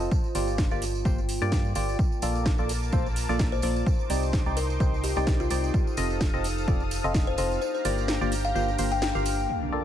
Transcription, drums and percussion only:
0.11 kick loud
0.11 tambourine medium
0.24 tambourine soft
0.35 open hi-hat loud
0.35 tambourine medium
0.47 tambourine soft
0.58 kick loud
0.58 snare loud
0.58 tambourine soft
0.71 tambourine soft
0.82 open hi-hat loud
0.82 tambourine medium
0.95 tambourine soft
1.05 kick loud
1.05 tambourine medium
1.18 tambourine soft
1.29 open hi-hat loud
1.29 tambourine medium
1.42 tambourine soft
1.52 kick loud
1.52 snare loud
1.52 tambourine medium
1.65 tambourine soft
1.75 open hi-hat loud
1.75 tambourine loud
1.89 tambourine soft
1.99 kick loud
1.99 tambourine soft
2.12 tambourine soft
2.22 open hi-hat loud
2.22 tambourine medium
2.35 tambourine soft
2.46 kick loud
2.46 snare loud
2.46 tambourine soft
2.58 tambourine soft
2.69 open hi-hat loud
2.69 tambourine medium
2.83 tambourine soft
2.92 kick loud
2.92 tambourine medium
3.06 tambourine soft
3.16 open hi-hat loud
3.16 tambourine medium
3.29 tambourine soft
3.39 kick loud
3.39 snare loud
3.39 tambourine medium
3.53 tambourine soft
3.62 open hi-hat loud
3.62 tambourine medium
3.76 tambourine soft
3.86 kick loud
3.86 tambourine medium
3.99 tambourine soft
4.10 open hi-hat loud
4.10 tambourine medium
4.23 tambourine soft
4.33 kick loud
4.33 snare loud
4.33 tambourine medium
4.46 tambourine soft
4.57 open hi-hat loud
4.57 tambourine medium
4.70 tambourine soft
4.80 kick loud
4.80 tambourine medium
4.94 tambourine soft
5.04 open hi-hat medium
5.04 tambourine medium
5.17 tambourine soft
5.27 kick loud
5.27 snare loud
5.27 tambourine medium
5.40 tambourine soft
5.50 open hi-hat loud
5.50 tambourine medium
5.64 tambourine soft
5.74 kick loud
5.74 tambourine soft
5.87 tambourine soft
5.97 open hi-hat loud
5.97 tambourine medium
6.10 tambourine soft
6.21 kick loud
6.21 snare loud
6.21 tambourine medium
6.34 tambourine soft
6.44 open hi-hat loud
6.44 tambourine medium
6.58 tambourine soft
6.68 kick loud
6.68 tambourine medium
6.80 tambourine soft
6.91 open hi-hat medium
6.91 tambourine medium
7.04 tambourine soft
7.14 kick loud
7.14 snare loud
7.14 tambourine soft
7.27 tambourine soft
7.38 open hi-hat loud
7.38 tambourine medium
7.52 tambourine soft
7.62 tambourine soft
7.74 tambourine soft
7.85 open hi-hat loud
7.85 tambourine medium
7.98 tambourine soft
8.08 snare loud
8.08 tambourine medium
8.22 tambourine soft
8.32 open hi-hat loud
8.32 tambourine medium
8.44 tambourine soft
8.56 tambourine medium
8.68 tambourine soft
8.78 open hi-hat loud
8.78 tambourine medium
8.91 tambourine soft
9.02 snare loud
9.02 tambourine soft
9.15 tambourine soft
9.26 open hi-hat loud
9.26 tambourine medium
9.39 tambourine soft

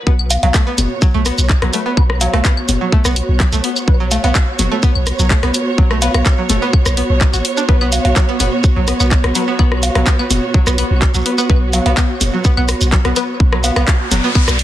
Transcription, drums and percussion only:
0.07 kick loud
0.19 claves medium
0.30 open hi-hat medium
0.30 cowbell medium
0.30 shaker medium
0.43 open hi-hat soft
0.43 cowbell medium
0.54 kick loud
0.54 clap loud
0.54 shaker soft
0.78 open hi-hat loud
0.78 high conga medium
0.78 claves medium
0.78 shaker soft
1.02 kick loud
1.02 shaker soft
1.26 cross-stick medium
1.26 open hi-hat medium
1.26 shaker medium
1.38 claves medium
1.38 shaker soft
1.50 kick loud
1.50 clap medium
1.62 cross-stick medium
1.62 open hi-hat soft
1.62 high conga medium
1.73 open hi-hat medium
1.73 shaker soft
1.97 kick loud
1.97 claves medium
2.10 cross-stick medium
2.21 open hi-hat loud
2.21 cowbell medium
2.21 shaker soft
2.34 cross-stick medium
2.34 open hi-hat soft
2.34 cowbell medium
2.45 kick loud
2.45 clap loud
2.45 shaker soft
2.57 claves medium
2.69 open hi-hat loud
2.69 high conga medium
2.69 shaker soft
2.92 kick loud
3.05 cross-stick medium
3.05 shaker soft
3.16 open hi-hat loud
3.16 claves medium
3.40 kick loud
3.40 clap loud
3.53 open hi-hat soft
3.53 shaker soft
3.64 open hi-hat loud
3.76 claves medium
3.76 shaker soft
3.88 kick loud
4.11 open hi-hat loud
4.11 cowbell medium
4.11 shaker soft
4.24 open hi-hat soft
4.24 cowbell medium
4.35 kick loud
4.35 clap loud
4.35 claves medium
4.35 shaker soft
4.59 open hi-hat loud
4.59 high conga medium
4.59 shaker soft
4.83 kick loud
4.83 shaker soft
4.95 claves medium
5.07 cross-stick medium
5.07 open hi-hat loud
5.07 shaker soft
5.19 shaker soft
5.31 kick loud
5.31 clap loud
5.43 cross-stick medium
5.43 open hi-hat soft
5.43 high conga medium
5.54 open hi-hat loud
5.54 claves medium
5.54 shaker soft
5.78 kick loud
5.91 cross-stick medium
6.02 open hi-hat loud
6.02 cowbell medium
6.02 shaker soft
6.14 cross-stick medium
6.14 open hi-hat soft
6.14 cowbell medium
6.14 claves medium
6.26 kick loud
6.26 clap medium
6.26 shaker soft
6.50 open hi-hat loud
6.50 high conga medium
6.50 shaker soft
6.73 kick loud
6.73 claves medium
6.86 cross-stick medium
6.86 shaker soft
6.97 open hi-hat loud
7.21 kick loud
7.21 clap medium
7.33 open hi-hat soft
7.33 claves medium
7.33 shaker soft
7.45 open hi-hat loud
7.57 shaker soft
7.69 kick loud
7.81 claves medium
7.92 open hi-hat medium
7.92 cowbell medium
7.92 shaker soft
8.05 open hi-hat soft
8.05 cowbell medium
8.16 kick loud
8.16 clap medium
8.16 shaker soft
8.40 open hi-hat medium
8.40 high conga medium
8.40 claves medium
8.40 shaker soft
8.64 kick loud
8.64 shaker soft
8.88 cross-stick medium
8.88 open hi-hat medium
8.88 shaker soft
9.00 claves medium
9.00 shaker soft
9.11 kick loud
9.11 clap medium
9.24 cross-stick medium
9.24 open hi-hat soft
9.24 high conga medium
9.35 open hi-hat medium
9.35 shaker soft
9.59 kick loud
9.59 claves medium
9.72 cross-stick medium
9.83 open hi-hat medium
9.83 cowbell medium
9.83 shaker soft
9.95 cross-stick medium
9.95 open hi-hat soft
9.95 cowbell medium
10.07 kick loud
10.07 clap medium
10.07 shaker soft
10.19 claves medium
10.31 open hi-hat medium
10.31 high conga medium
10.31 shaker soft
10.54 kick loud
10.67 cross-stick medium
10.67 shaker soft
10.78 open hi-hat medium
10.78 claves medium
11.02 kick loud
11.02 clap medium
11.14 open hi-hat soft
11.14 shaker soft
11.26 open hi-hat medium
11.38 claves medium
11.38 shaker soft
11.50 kick loud
11.73 open hi-hat medium
11.73 cowbell medium
11.73 shaker medium
11.86 open hi-hat soft
11.86 cowbell medium
11.97 kick loud
11.97 clap medium
11.97 claves medium
11.97 shaker soft
12.21 open hi-hat medium
12.21 high conga medium
12.21 shaker soft
12.45 kick loud
12.45 shaker soft
12.57 claves medium
12.69 cross-stick medium
12.69 open hi-hat medium
12.69 shaker medium
12.81 shaker soft
12.92 kick loud
12.92 clap medium
13.05 cross-stick medium
13.05 open hi-hat soft
13.05 high conga medium
13.16 open hi-hat medium
13.16 claves medium
13.16 shaker soft
13.40 kick loud
13.53 cross-stick medium
13.64 open hi-hat medium
13.64 cowbell medium
13.64 shaker medium
13.76 cross-stick medium
13.76 open hi-hat soft
13.76 cowbell medium
13.76 claves medium
13.88 kick loud
13.88 clap loud
13.88 shaker soft
14.11 open hi-hat medium
14.11 high conga medium
14.11 shaker soft
14.35 kick loud
14.35 claves medium
14.48 cross-stick medium
14.48 shaker soft
14.59 open hi-hat medium

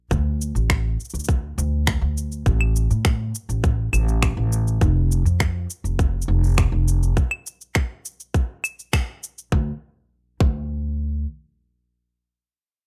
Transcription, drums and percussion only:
0.11 kick medium
0.11 cabasa soft
0.41 cabasa medium
0.56 cabasa soft
0.70 finger snap medium
0.70 kick medium
0.70 cabasa soft
1.00 cabasa soft
1.05 cabasa soft
1.10 cabasa soft
1.15 cabasa soft
1.19 cabasa medium
1.24 cabasa medium
1.29 kick loud
1.29 cabasa soft
1.59 cabasa medium
1.87 finger snap medium
1.87 kick medium
1.87 cabasa soft
2.18 cabasa medium
2.32 cabasa soft
2.46 kick medium
2.46 cabasa soft
2.61 claves medium
2.76 cabasa medium
2.91 cabasa soft
3.05 finger snap medium
3.05 kick loud
3.05 cabasa soft
3.35 cabasa medium
3.50 cabasa soft
3.64 kick loud
3.64 cabasa soft
3.93 cabasa medium
3.93 claves medium
4.09 cabasa soft
4.22 finger snap medium
4.22 kick medium
4.22 cabasa soft
4.22 claves medium
4.52 cabasa medium
4.68 cabasa soft
4.81 kick loud
4.81 cabasa soft
5.12 cabasa medium
5.26 cabasa soft
5.40 finger snap medium
5.40 kick loud
5.40 cabasa soft
5.70 cabasa medium
5.85 cabasa soft
5.99 kick loud
5.99 cabasa soft
6.22 cabasa medium
6.44 cabasa soft
6.46 cabasa soft
6.49 cabasa soft
6.51 cabasa soft
6.54 cabasa soft
6.56 finger snap medium
6.56 kick loud
6.56 cabasa soft
6.59 cabasa soft
6.88 cabasa medium
7.03 cabasa soft
7.17 kick medium
7.17 cabasa soft
7.31 claves medium
7.47 cabasa medium
7.61 cabasa soft
7.75 finger snap medium
7.75 kick loud
7.75 cabasa soft
8.05 cabasa medium
8.20 cabasa soft
8.34 kick loud
8.34 cabasa soft
8.64 cabasa medium
8.64 claves medium
8.79 cabasa soft
8.93 finger snap medium
8.93 kick loud
8.93 cabasa soft
8.93 claves medium
9.24 cabasa medium
9.38 cabasa soft
9.52 kick loud
10.40 kick loud

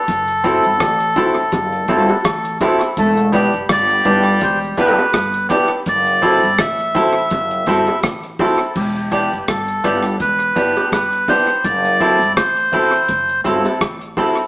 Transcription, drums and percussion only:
0.08 kick loud
0.08 closed hi-hat medium
0.28 closed hi-hat medium
0.44 kick medium
0.44 closed hi-hat medium
0.65 closed hi-hat soft
0.80 kick loud
0.80 cross-stick loud
0.80 closed hi-hat medium
1.00 closed hi-hat soft
1.16 kick medium
1.16 closed hi-hat medium
1.16 low bongo medium
1.36 closed hi-hat soft
1.52 kick loud
1.52 closed hi-hat loud
1.52 high bongo medium
1.72 closed hi-hat soft
1.88 kick loud
1.88 closed hi-hat medium
1.88 high bongo medium
2.09 closed hi-hat soft
2.09 high bongo medium
2.25 kick loud
2.25 cross-stick loud
2.25 closed hi-hat medium
2.45 closed hi-hat medium
2.61 kick loud
2.61 closed hi-hat medium
2.61 high bongo medium
2.61 low bongo medium
2.81 cross-stick medium
2.81 closed hi-hat soft
2.97 kick loud
2.97 closed hi-hat medium
3.17 closed hi-hat medium
3.33 kick medium
3.33 closed hi-hat medium
3.54 closed hi-hat soft
3.69 kick loud
3.69 cross-stick loud
3.69 closed hi-hat loud
3.89 closed hi-hat medium
4.05 kick medium
4.05 closed hi-hat medium
4.05 low bongo medium
4.41 kick loud
4.41 closed hi-hat medium
4.41 high bongo medium
4.61 closed hi-hat soft
4.77 kick medium
4.77 closed hi-hat medium
4.77 high bongo medium
4.99 high bongo medium
5.13 kick loud
5.13 cross-stick loud
5.13 closed hi-hat medium
5.34 closed hi-hat medium
5.50 kick loud
5.50 closed hi-hat medium
5.50 high bongo medium
5.50 low bongo medium
5.70 closed hi-hat soft
5.86 kick loud
5.86 closed hi-hat medium
6.07 closed hi-hat medium
6.22 kick medium
6.22 closed hi-hat medium
6.43 closed hi-hat soft
6.58 kick loud
6.58 cross-stick loud
6.58 closed hi-hat loud
6.79 closed hi-hat medium
6.95 kick medium
6.95 closed hi-hat medium
6.95 low bongo medium
7.15 closed hi-hat soft
7.30 kick loud
7.30 closed hi-hat loud
7.30 high bongo medium
7.51 closed hi-hat soft
7.66 kick medium
7.66 closed hi-hat medium
7.66 high bongo medium
7.87 closed hi-hat soft
7.87 high bongo medium
8.03 kick loud
8.03 cross-stick loud
8.03 closed hi-hat medium
8.23 closed hi-hat medium
8.39 kick loud
8.39 open hi-hat medium
8.39 high bongo medium
8.39 low bongo medium
8.60 closed hi-hat soft
8.76 kick loud
8.76 crash medium
8.96 closed hi-hat soft
9.12 kick medium
9.12 closed hi-hat medium
9.33 closed hi-hat medium
9.48 kick loud
9.48 cross-stick loud
9.48 closed hi-hat medium
9.68 closed hi-hat medium
9.84 kick medium
9.84 cross-stick medium
9.84 closed hi-hat medium
10.05 closed hi-hat medium
10.20 kick loud
10.20 closed hi-hat medium
10.40 closed hi-hat soft
10.56 kick medium
10.56 closed hi-hat medium
10.56 high bongo medium
10.77 closed hi-hat medium
10.77 high bongo medium
10.92 kick loud
10.92 cross-stick loud
10.92 closed hi-hat medium
11.13 closed hi-hat medium
11.28 kick medium
11.28 open hi-hat medium
11.28 high bongo medium
11.28 low bongo medium
11.49 closed hi-hat soft
11.64 kick loud
11.64 closed hi-hat medium
11.85 closed hi-hat medium
12.01 kick medium
12.01 closed hi-hat medium
12.22 closed hi-hat medium
12.37 kick loud
12.37 cross-stick loud
12.37 closed hi-hat loud
12.57 closed hi-hat soft
12.73 kick medium
12.73 closed hi-hat medium
12.93 closed hi-hat medium
13.08 kick loud
13.08 closed hi-hat medium
13.29 closed hi-hat soft
13.45 kick medium
13.45 closed hi-hat medium
13.45 high bongo medium
13.65 closed hi-hat medium
13.65 high bongo medium
13.81 kick loud
13.81 cross-stick loud
13.81 closed hi-hat medium
14.01 closed hi-hat soft
14.17 kick loud
14.17 open hi-hat medium
14.17 high bongo medium
14.17 low bongo medium
14.37 closed hi-hat medium

